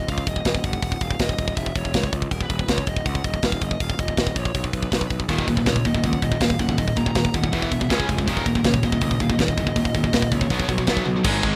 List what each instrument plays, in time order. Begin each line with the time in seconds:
0.08 picked electric bass C#2, lead electric guitar F5, kick, open hi-hat
0.18 kick
0.27 picked electric bass D#1, lead electric guitar D#5, kick, open hi-hat
0.36 kick
0.45 picked electric bass D#1, kick, snare, open hi-hat
0.55 kick
0.64 picked electric bass F#1, lead electric guitar F#5, kick, open hi-hat
0.73 kick
0.82 picked electric bass D#1, lead electric guitar F#5, kick, open hi-hat
0.92 kick
1.01 picked electric bass D#1, lead electric guitar F5, kick, open hi-hat
1.11 kick
1.19 picked electric bass D#1, lead electric guitar D#5, kick, snare, open hi-hat
1.29 kick
1.38 picked electric bass D#1, kick, open hi-hat
1.48 kick
1.57 picked electric bass E1, lead electric guitar E5, kick, open hi-hat
1.66 kick
1.75 picked electric bass E1, lead electric guitar C#5, kick, open hi-hat
1.85 kick
1.94 picked electric bass C#2, kick, snare, open hi-hat
2.03 kick
2.12 picked electric bass C#2, kick, open hi-hat
2.22 kick
2.31 picked electric bass D#1, lead electric guitar A#4, kick, open hi-hat
2.41 lead electric guitar B4, kick
2.49 picked electric bass D#1, kick, open hi-hat
2.59 kick
2.68 picked electric bass C#2, lead electric guitar C#5, kick, snare, open hi-hat
2.78 kick
2.87 picked electric bass D#1, lead electric guitar D#5, kick, open hi-hat
2.96 kick
3.06 picked electric bass C#2, lead electric guitar F#5, kick, open hi-hat
3.15 kick
3.24 picked electric bass D#1, lead electric guitar D#5, kick, open hi-hat
3.34 kick
3.43 picked electric bass D#1, lead electric guitar F5, kick, snare, open hi-hat
3.52 kick
3.61 picked electric bass F#1, lead electric guitar D#5, kick, open hi-hat
3.71 kick
3.80 picked electric bass D#1, lead electric guitar F5, kick, open hi-hat
3.90 kick
3.99 picked electric bass D#1, lead electric guitar D#5, kick, open hi-hat
4.08 kick
4.17 picked electric bass D#1, kick, snare, open hi-hat
4.27 kick
4.36 picked electric bass A#1, lead electric guitar C#5, kick, open hi-hat
4.45 kick
4.54 picked electric bass B1, kick, open hi-hat
4.64 lead electric guitar B4, kick
4.73 picked electric bass B1, kick, open hi-hat
4.83 kick
4.92 picked electric bass B1, lead electric guitar B4, kick, snare, open hi-hat
5.01 kick
5.10 picked electric bass B1, kick, open hi-hat
5.20 kick
5.29 picked electric bass D#1, distorted electric guitar D#2 A#2 D#3, lead electric guitar A#4, kick, open hi-hat
5.38 lead electric guitar B4, kick
5.47 picked electric bass D#1, distorted electric guitar D#2 A#2, kick, open hi-hat
5.57 distorted electric guitar D#2 A#2, kick
5.66 picked electric bass C#2, distorted electric guitar D#2 A#2, lead electric guitar C#5, kick, snare, open hi-hat
5.76 kick
5.85 picked electric bass D#1, distorted electric guitar D#2 A#2, lead electric guitar D#5, kick, open hi-hat
5.95 distorted electric guitar D#2 A#2, kick
6.04 picked electric bass C#2, distorted electric guitar D#2 A#2, lead electric guitar F#5, kick, open hi-hat
6.13 kick
6.22 picked electric bass D#1, distorted electric guitar D#2 A#2, lead electric guitar D#5, kick, open hi-hat
6.32 distorted electric guitar D#2 A#2, kick
6.41 picked electric bass D#1, distorted electric guitar D#2 A#2, lead electric guitar F5, kick, snare, open hi-hat
6.50 kick
6.59 picked electric bass F#1, distorted electric guitar D#2 A#2, lead electric guitar F#5, kick, open hi-hat
6.69 distorted electric guitar D#2 A#2, kick
6.78 picked electric bass D#1, distorted electric guitar D#2 A#2, lead electric guitar D#5, kick, open hi-hat
6.88 kick
6.96 picked electric bass D#1, distorted electric guitar D#2 A#2, lead electric guitar A#5, kick, open hi-hat
7.06 distorted electric guitar D#2 A#2, kick
7.15 picked electric bass D#1, distorted electric guitar D#2 A#2, kick, snare, open hi-hat
7.25 kick
7.34 picked electric bass D#1, distorted electric guitar D#2 A#2, lead electric guitar F#5, kick, open hi-hat
7.43 distorted electric guitar D#2 A#2, kick
7.52 picked electric bass E1, distorted electric guitar E2 B2 E3, kick, open hi-hat
7.62 lead electric guitar E5, kick
7.71 picked electric bass E1, distorted electric guitar E2 B2, kick, open hi-hat
7.80 distorted electric guitar E2 B2, kick
7.89 picked electric bass C#2, distorted electric guitar C#3 G#3 C#4, lead electric guitar G#5, kick, snare, open hi-hat
8.00 kick
8.07 picked electric bass F1, distorted electric guitar C#3 G#3, kick, open hi-hat
8.17 distorted electric guitar C#3 G#3, kick
8.27 picked electric bass D#1, distorted electric guitar D#2 A#2 D#3, lead electric guitar A#4, kick, open hi-hat
8.36 lead electric guitar A#4, kick
8.46 picked electric bass D#1, distorted electric guitar D#2 A#2, kick, open hi-hat
8.55 distorted electric guitar D#2 A#2, kick
8.64 picked electric bass C#2, distorted electric guitar D#2 A#2, lead electric guitar C#5, kick, snare, open hi-hat
8.74 kick
8.83 picked electric bass D#1, distorted electric guitar D#2 A#2, lead electric guitar D#5, kick, open hi-hat
8.92 distorted electric guitar D#2 A#2, kick
9.01 picked electric bass C#2, distorted electric guitar D#2 A#2, kick, open hi-hat
9.11 kick
9.20 picked electric bass D#1, distorted electric guitar D#2 A#2, lead electric guitar F5, kick, open hi-hat
9.30 distorted electric guitar D#2 A#2, lead electric guitar D#5, kick
9.39 picked electric bass D#1, distorted electric guitar D#2 A#2, lead electric guitar D#5, kick, snare, open hi-hat
9.48 kick
9.57 picked electric bass F#1, distorted electric guitar D#2 A#2, kick, open hi-hat
9.67 distorted electric guitar D#2 A#2, kick
9.76 picked electric bass D#1, distorted electric guitar D#2 A#2, kick, open hi-hat
9.85 kick
9.94 picked electric bass D#1, distorted electric guitar D#2 A#2, kick, open hi-hat
10.04 distorted electric guitar D#2 A#2, kick
10.13 picked electric bass D#1, distorted electric guitar D#2 A#2, kick, snare, open hi-hat
10.22 kick
10.32 picked electric bass C#2, distorted electric guitar D#2 A#2, kick, open hi-hat
10.37 lead electric guitar C#5
10.41 distorted electric guitar D#2 A#2, kick
10.50 picked electric bass B1, distorted electric guitar B2 F#3 B3, kick, open hi-hat
10.60 kick
10.68 picked electric bass B1, distorted electric guitar B2 F#3, kick, open hi-hat
10.78 distorted electric guitar B2 F#3, kick
10.87 picked electric bass B1, distorted electric guitar B2 F#3 B3, kick, snare, open hi-hat
10.97 kick
11.05 picked electric bass B1, distorted electric guitar B2 F#3, high tom
11.16 distorted electric guitar B2 F#3
11.24 picked electric bass G#1, distorted electric guitar G#2 D#3 G#3 B3 D#4, pipe organ G#3 D#4 B4 A#5, kick, crash
11.43 kick